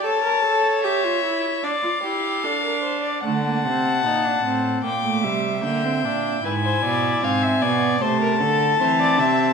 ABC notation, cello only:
X:1
M:4/4
L:1/8
Q:1/4=75
K:Dphr
V:1 name="Cello" clef=bass
z8 | D, C, B,, A,, B,, C, D, B,, | ^G,, =B,, G,, B,, C, D, =E, C, |]